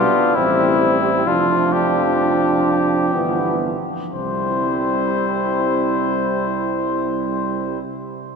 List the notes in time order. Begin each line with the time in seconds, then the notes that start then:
Already playing: B3 D4 F4
0.35 A1 G3 C4 E4
0.81 C4
1.27 F1 F3 D4 F4
1.73 G4
3.13 G1 E3 B3
4.13 C2 G3 C4 E4 C5